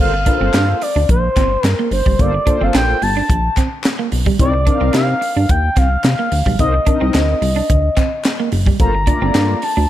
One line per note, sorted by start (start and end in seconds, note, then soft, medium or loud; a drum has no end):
0.00 0.30 G1 medium
0.00 0.12 A#3 medium
0.00 0.12 F4 medium
0.00 0.12 A4 medium
0.00 0.12 C5 loud
0.00 0.84 F5 loud
0.14 muted clean electric guitar stroke soft
0.26 0.77 A#3 medium
0.26 0.37 D4 medium
0.26 0.77 F4 medium
0.26 0.77 A4 medium
0.26 0.34 B4 medium
0.26 kick medium
0.26 closed hi-hat medium
0.34 0.81 C5 medium
0.41 0.50 G1 medium
0.41 0.50 C4 medium
0.54 0.74 G2 loud
0.54 0.64 D4 medium
0.54 snare loud
0.54 clap medium
0.54 closed hi-hat medium
0.55 clap medium
0.82 1.09 D5 medium
0.82 muted clean electric guitar stroke soft
0.82 open hi-hat medium
0.96 1.06 D2 medium
0.96 1.05 D4 medium
1.09 1.29 A#1 loud
1.09 1.66 C5 loud
1.09 kick loud
1.09 closed hi-hat medium
1.37 1.57 G1 medium
1.37 1.47 C4 medium
1.37 kick medium
1.37 clap medium
1.37 closed hi-hat medium
1.64 1.75 G2 loud
1.64 snare loud
1.64 clap medium
1.64 closed hi-hat medium
1.66 1.88 A#4 loud
1.66 clap medium
1.79 1.88 A#3 medium
1.91 2.02 G1 medium
1.91 2.22 C5 medium
1.91 muted clean electric guitar stroke soft
1.91 open hi-hat medium
2.06 2.16 F#1 medium
2.06 2.15 G3 medium
2.06 kick medium
2.19 2.40 G1 loud
2.19 2.32 A#3 medium
2.19 2.32 F4 medium
2.19 2.32 A4 medium
2.19 2.33 C5 medium
2.19 2.64 D5 loud
2.19 kick loud
2.19 closed hi-hat medium
2.34 muted clean electric guitar stroke soft
2.46 2.97 A#3 medium
2.46 2.57 D4 medium
2.46 2.97 F4 medium
2.46 2.97 A4 medium
2.46 2.97 C5 medium
2.46 kick medium
2.46 closed hi-hat medium
2.61 2.71 G1 medium
2.61 2.70 C4 medium
2.61 2.75 F5 loud
2.74 2.95 A#1 medium
2.74 2.84 D4 medium
2.74 3.04 G5 loud
2.74 snare loud
2.74 clap medium
2.74 closed hi-hat medium
2.76 clap medium
3.02 3.22 G1 loud
3.02 3.57 A5 loud
3.02 muted clean electric guitar stroke soft
3.02 open hi-hat medium
3.17 3.26 D4 medium
3.30 3.50 A#1 loud
3.30 kick loud
3.30 closed hi-hat medium
3.57 3.67 C4 medium
3.57 kick medium
3.57 clap medium
3.57 closed hi-hat medium
3.84 snare loud
3.84 clap medium
3.84 closed hi-hat medium
3.86 clap medium
3.99 4.08 A#3 medium
4.12 4.32 B1 medium
4.12 muted clean electric guitar stroke soft
4.12 open hi-hat medium
4.26 4.35 G3 medium
4.26 kick medium
4.39 4.71 C2 loud
4.39 4.53 C4 medium
4.39 4.53 D#4 medium
4.39 4.53 A#4 medium
4.39 4.53 D5 medium
4.39 4.91 D5 loud
4.39 kick loud
4.39 closed hi-hat medium
4.54 muted clean electric guitar stroke soft
4.66 5.17 C4 medium
4.66 4.77 D4 medium
4.66 5.17 D#4 medium
4.66 5.17 A#4 medium
4.66 5.18 F5 medium
4.66 kick medium
4.66 closed hi-hat medium
4.81 4.91 C2 medium
4.81 4.90 C4 medium
4.93 5.15 C3 loud
4.93 5.04 D4 medium
4.93 5.52 F5 loud
4.93 snare medium
4.93 clap medium
4.93 closed hi-hat medium
4.96 clap medium
5.21 muted clean electric guitar stroke soft
5.21 open hi-hat medium
5.36 5.46 G2 medium
5.36 5.46 D4 medium
5.49 5.70 D#2 loud
5.49 5.79 G5 loud
5.49 kick loud
5.49 closed hi-hat medium
5.77 5.97 C2 medium
5.77 5.87 C4 medium
5.77 6.59 F5 loud
5.77 kick medium
5.77 clap medium
5.77 closed hi-hat medium
6.04 6.15 C3 medium
6.04 snare loud
6.04 clap medium
6.04 closed hi-hat medium
6.06 clap medium
6.19 6.28 A#3 medium
6.32 6.43 D2 medium
6.32 muted clean electric guitar stroke soft
6.32 open hi-hat medium
6.46 6.56 B1 medium
6.46 6.56 G3 medium
6.46 kick medium
6.59 6.80 C2 loud
6.59 6.73 C4 medium
6.59 6.73 D#4 medium
6.59 6.73 A#4 medium
6.59 6.73 C5 medium
6.59 8.48 D#5 medium
6.59 kick loud
6.59 closed hi-hat medium
6.74 muted clean electric guitar stroke soft
6.86 7.37 C4 medium
6.86 6.97 D4 medium
6.86 7.37 D#4 medium
6.86 7.38 A#4 medium
6.86 7.38 D#5 medium
6.86 kick medium
6.86 closed hi-hat medium
7.01 7.11 C2 loud
7.01 7.10 C4 medium
7.14 7.35 D2 medium
7.14 7.24 D4 medium
7.14 snare loud
7.14 clap medium
7.14 closed hi-hat medium
7.16 clap medium
7.42 7.62 C2 medium
7.42 muted clean electric guitar stroke soft
7.42 open hi-hat medium
7.56 7.65 D4 medium
7.70 7.90 D2 medium
7.70 kick loud
7.70 closed hi-hat medium
7.97 8.07 C4 medium
7.97 kick medium
7.97 clap medium
7.97 closed hi-hat medium
8.24 snare loud
8.24 clap medium
8.24 closed hi-hat medium
8.26 clap medium
8.40 8.48 A#3 medium
8.52 8.73 F#1 loud
8.52 muted clean electric guitar stroke soft
8.52 open hi-hat medium
8.66 8.76 G3 medium
8.66 kick medium
8.79 9.11 G1 medium
8.79 8.93 A#3 medium
8.79 8.93 F4 medium
8.79 8.93 A4 medium
8.79 8.93 C5 medium
8.79 9.65 A#5 loud
8.79 kick loud
8.79 closed hi-hat medium
8.95 muted clean electric guitar stroke soft
9.07 9.58 A3 medium
9.07 9.58 A#3 medium
9.07 9.17 D4 medium
9.07 9.58 F4 medium
9.07 9.58 D5 medium
9.07 kick medium
9.07 closed hi-hat medium
9.22 9.31 G1 medium
9.22 9.31 C4 medium
9.35 9.55 G2 loud
9.35 9.45 D4 medium
9.35 snare loud
9.35 clap medium
9.35 closed hi-hat medium
9.62 9.90 A5 loud
9.62 muted clean electric guitar stroke soft
9.62 open hi-hat medium
9.77 9.87 D2 medium
9.77 9.86 D4 medium